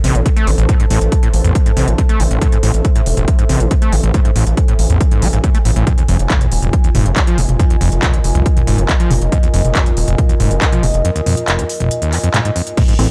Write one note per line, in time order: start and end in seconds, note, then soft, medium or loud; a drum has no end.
0.00 5.87 A4 medium
0.00 7.23 C5 medium
0.00 5.87 E5 medium
0.00 3.40 A5 medium
0.04 0.12 A1 medium
0.04 0.16 C3 loud
0.04 open hi-hat loud
0.15 0.22 A1 medium
0.15 0.21 A2 medium
0.15 closed hi-hat medium
0.26 0.29 C3 loud
0.26 kick loud
0.26 closed hi-hat medium
0.36 0.49 A3 medium
0.36 closed hi-hat medium
0.47 0.55 A1 medium
0.47 0.51 A2 medium
0.47 open hi-hat loud
0.58 0.67 A1 loud
0.58 0.65 A1 medium
0.58 closed hi-hat medium
0.69 0.75 A2 loud
0.69 kick loud
0.69 closed hi-hat medium
0.80 0.86 G#2 medium
0.80 closed hi-hat medium
0.90 0.98 A1 medium
0.90 0.99 A2 loud
0.90 open hi-hat loud
1.01 1.09 A1 medium
1.01 closed hi-hat medium
1.12 kick loud
1.12 closed hi-hat medium
1.23 1.29 A2 medium
1.23 closed hi-hat medium
1.34 1.41 A1 loud
1.34 open hi-hat loud
1.44 1.53 A1 loud
1.44 1.52 E2 medium
1.44 closed hi-hat medium
1.55 kick loud
1.55 closed hi-hat medium
1.66 1.72 G#2 medium
1.66 closed hi-hat medium
1.77 1.84 A1 medium
1.77 1.89 C3 loud
1.77 open hi-hat loud
1.88 1.95 A1 medium
1.88 1.94 A2 medium
1.88 closed hi-hat medium
1.98 2.02 C3 loud
1.98 kick loud
1.98 closed hi-hat medium
2.09 2.21 A3 medium
2.09 closed hi-hat medium
2.20 2.27 A1 medium
2.20 2.24 A2 medium
2.20 open hi-hat loud
2.31 2.38 A1 medium
2.31 2.40 A1 loud
2.31 closed hi-hat medium
2.41 2.48 A2 loud
2.41 kick loud
2.41 closed hi-hat medium
2.52 2.58 G#2 medium
2.52 closed hi-hat medium
2.63 2.71 A1 loud
2.63 2.72 A2 loud
2.63 open hi-hat loud
2.74 2.81 A1 medium
2.74 closed hi-hat medium
2.85 kick loud
2.85 closed hi-hat medium
2.96 3.01 A2 medium
2.96 closed hi-hat medium
3.06 3.14 E1 loud
3.06 open hi-hat loud
3.17 3.24 E1 medium
3.17 3.26 A1 loud
3.17 closed hi-hat medium
3.27 12.78 G#5 medium
3.27 kick loud
3.27 closed hi-hat medium
3.39 3.45 G#2 medium
3.39 closed hi-hat medium
3.49 3.57 A1 medium
3.49 3.62 C3 loud
3.49 open hi-hat loud
3.60 3.68 A1 medium
3.60 3.66 A2 medium
3.60 closed hi-hat medium
3.71 3.75 C3 loud
3.71 kick loud
3.71 closed hi-hat medium
3.82 3.94 A3 medium
3.82 closed hi-hat medium
3.93 4.00 A1 medium
3.93 3.96 A2 medium
3.93 open hi-hat loud
4.03 4.11 A1 medium
4.03 4.12 A1 loud
4.03 closed hi-hat medium
4.14 4.20 A2 loud
4.14 kick loud
4.14 closed hi-hat medium
4.25 4.31 G#2 medium
4.25 closed hi-hat soft
4.36 4.43 A1 medium
4.36 4.45 A2 loud
4.36 open hi-hat loud
4.47 4.54 A1 medium
4.47 closed hi-hat medium
4.57 kick loud
4.57 closed hi-hat medium
4.68 4.74 A2 medium
4.68 closed hi-hat soft
4.79 4.86 A1 medium
4.79 open hi-hat loud
4.90 4.99 A1 loud
4.90 4.97 E2 medium
4.90 closed hi-hat medium
5.00 kick loud
5.00 closed hi-hat medium
5.11 5.24 G#2 medium
5.11 closed hi-hat medium
5.22 5.30 A1 medium
5.22 5.28 A3 loud
5.22 open hi-hat loud
5.33 5.40 A1 medium
5.33 5.39 G#2 medium
5.33 closed hi-hat medium
5.44 5.50 A2 medium
5.44 kick loud
5.44 closed hi-hat medium
5.55 5.58 A3 medium
5.55 closed hi-hat soft
5.65 5.73 A1 medium
5.65 5.71 A2 loud
5.65 open hi-hat loud
5.76 5.83 A1 medium
5.76 5.85 A2 loud
5.76 closed hi-hat medium
5.87 5.93 F2 loud
5.87 12.77 F4 medium
5.87 kick loud
5.87 closed hi-hat medium
5.87 mid tom medium
5.98 6.04 D#2 medium
5.98 closed hi-hat medium
6.08 6.16 F1 loud
6.08 6.17 F2 loud
6.08 open hi-hat loud
6.19 6.27 F1 medium
6.19 12.77 A#4 medium
6.19 closed hi-hat medium
6.30 6.42 F1 loud
6.30 kick loud
6.30 clap loud
6.30 closed hi-hat medium
6.41 6.47 F2 medium
6.41 closed hi-hat soft
6.41 mid tom medium
6.52 6.59 D#1 loud
6.52 open hi-hat loud
6.61 6.70 D#1 medium
6.61 6.71 F1 loud
6.61 12.77 D#5 medium
6.61 closed hi-hat medium
6.73 kick loud
6.73 closed hi-hat medium
6.84 6.90 D#2 medium
6.84 closed hi-hat soft
6.95 7.02 F1 medium
6.95 7.07 G#2 medium
6.95 open hi-hat loud
6.95 mid tom medium
7.06 7.13 F1 medium
7.06 7.12 F2 medium
7.06 closed hi-hat medium
7.16 7.20 G#2 loud
7.16 kick loud
7.16 clap loud
7.16 closed hi-hat medium
7.27 7.39 F3 medium
7.27 closed hi-hat soft
7.38 7.45 F1 medium
7.38 7.41 F2 medium
7.38 open hi-hat loud
7.49 7.56 F1 medium
7.49 closed hi-hat medium
7.49 mid tom medium
7.59 7.65 F2 loud
7.59 kick loud
7.59 closed hi-hat medium
7.70 7.76 D#2 medium
7.70 closed hi-hat medium
7.81 7.89 F1 loud
7.81 7.90 F2 loud
7.81 open hi-hat loud
7.92 7.99 F1 medium
7.92 closed hi-hat soft
8.03 8.15 F1 loud
8.03 kick loud
8.03 clap loud
8.03 closed hi-hat medium
8.03 mid tom medium
8.13 8.19 F2 medium
8.13 closed hi-hat soft
8.24 8.32 F1 loud
8.24 open hi-hat loud
8.35 8.44 F1 loud
8.35 8.42 C2 medium
8.35 closed hi-hat soft
8.46 kick loud
8.46 closed hi-hat medium
8.57 8.63 D#2 medium
8.57 closed hi-hat medium
8.57 mid tom medium
8.67 8.75 F1 medium
8.67 8.80 G#2 loud
8.67 open hi-hat medium
8.78 8.86 F1 medium
8.78 8.84 F2 medium
8.78 closed hi-hat soft
8.89 8.93 G#2 loud
8.89 kick loud
8.89 clap loud
8.89 closed hi-hat medium
9.00 9.12 F3 medium
9.00 closed hi-hat medium
9.11 9.18 F1 medium
9.11 9.14 F2 medium
9.11 open hi-hat loud
9.11 mid tom medium
9.21 9.29 F1 medium
9.21 closed hi-hat soft
9.32 9.38 F2 loud
9.32 kick loud
9.32 closed hi-hat medium
9.43 9.49 D#2 medium
9.43 closed hi-hat soft
9.54 9.61 F1 medium
9.54 9.63 F2 loud
9.54 open hi-hat loud
9.65 9.72 F1 medium
9.65 closed hi-hat medium
9.65 mid tom medium
9.75 9.88 F1 loud
9.75 kick loud
9.75 clap loud
9.75 closed hi-hat medium
9.86 9.92 F2 medium
9.86 closed hi-hat soft
9.97 10.04 D#1 loud
9.97 open hi-hat loud
10.08 10.15 D#1 medium
10.08 10.17 F1 loud
10.08 closed hi-hat medium
10.18 kick loud
10.18 closed hi-hat medium
10.18 mid tom medium
10.29 10.35 D#2 medium
10.29 closed hi-hat medium
10.40 10.48 F1 medium
10.40 10.52 G#2 loud
10.40 open hi-hat medium
10.51 10.58 F1 medium
10.51 10.57 F2 medium
10.51 closed hi-hat medium
10.62 10.65 G#2 loud
10.62 kick loud
10.62 clap loud
10.62 closed hi-hat medium
10.72 10.85 F3 medium
10.72 closed hi-hat medium
10.72 mid tom medium
10.83 10.91 F1 medium
10.83 10.87 F2 medium
10.83 open hi-hat loud
10.94 11.01 F1 medium
10.94 closed hi-hat soft
11.05 11.11 F2 loud
11.05 closed hi-hat medium
11.16 11.22 D#2 medium
11.16 closed hi-hat medium
11.26 11.35 F2 loud
11.26 open hi-hat loud
11.26 mid tom medium
11.37 closed hi-hat medium
11.48 11.60 F1 loud
11.48 clap loud
11.48 closed hi-hat medium
11.59 11.65 F2 medium
11.59 closed hi-hat medium
11.70 open hi-hat loud
11.80 11.89 F1 loud
11.80 closed hi-hat medium
11.80 mid tom medium
11.91 closed hi-hat medium
12.02 12.14 D#2 medium
12.02 closed hi-hat medium
12.13 12.19 F2 medium
12.13 clap soft
12.13 open hi-hat loud
12.24 12.29 F2 loud
12.24 closed hi-hat medium
12.34 12.40 G#2 medium
12.34 clap loud
12.34 closed hi-hat medium
12.34 mid tom medium
12.45 12.51 G#2 medium
12.45 closed hi-hat medium
12.56 12.62 F2 medium
12.56 open hi-hat loud
12.67 closed hi-hat medium
12.77 12.83 A2 loud
12.77 13.11 A4 medium
12.77 kick loud
12.77 closed hi-hat medium
12.77 mid tom medium
12.77 crash loud
12.86 12.94 G#2 medium
12.86 13.11 C5 medium
12.86 closed hi-hat medium
12.96 13.07 A1 medium
12.96 13.08 A2 loud
12.96 13.07 E3 medium
12.96 13.07 A3 medium
12.96 13.07 C4 medium
12.96 13.11 E5 medium
12.96 open hi-hat loud